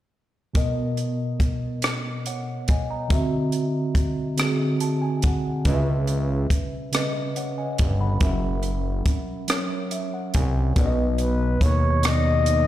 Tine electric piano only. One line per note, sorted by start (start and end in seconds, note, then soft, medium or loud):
0.53 1.34 B2 medium
0.53 1.34 B3 medium
0.53 1.35 A#4 medium
0.53 1.36 D#5 medium
2.27 2.67 C#5 soft
2.27 2.66 F#5 soft
2.70 2.89 D#5 soft
2.70 2.89 G#5 medium
2.91 3.31 D#5 soft
2.91 3.30 A#5 medium
3.08 3.89 D3 medium
3.08 3.90 C4 medium
3.08 3.90 F#4 medium
3.08 3.91 E5 medium
4.36 5.17 D3 medium
4.36 5.17 C4 medium
4.36 5.18 F#4 medium
4.36 5.18 G#4 medium
4.81 5.01 A5 medium
5.02 5.22 G#5 medium
5.24 5.63 F#5 medium
5.64 6.45 C#3 medium
5.64 6.45 C#4 medium
5.64 6.46 B4 medium
5.64 5.73 D#5 medium
5.74 6.49 E5 medium
6.92 7.72 C#3 medium
6.92 7.73 C#4 medium
6.92 7.73 B4 medium
6.92 7.37 D#5 medium
7.37 7.57 C#5 soft
7.37 7.57 F#5 medium
7.58 7.98 D#5 soft
7.58 7.98 G#5 soft
8.01 8.41 F#5 soft
8.01 8.41 B5 medium
8.20 9.00 F#3 medium
8.20 9.01 C#4 medium
8.20 9.01 A#4 medium
8.20 9.02 E5 medium
9.48 10.28 F#3 medium
9.48 10.28 C#4 medium
9.48 10.29 A#4 medium
9.48 10.30 C#5 medium
9.92 10.11 E5 medium
10.14 10.33 F#5 soft
10.35 10.74 G#5 medium
10.76 11.55 B2 medium
10.76 11.56 B3 medium
10.76 11.57 B4 medium
10.76 10.84 D5 medium
10.86 11.61 D#5 medium
12.04 12.67 B2 medium
12.04 12.67 B3 medium
12.04 12.67 A#4 soft
12.04 12.12 D5 soft
12.13 12.67 D#5 medium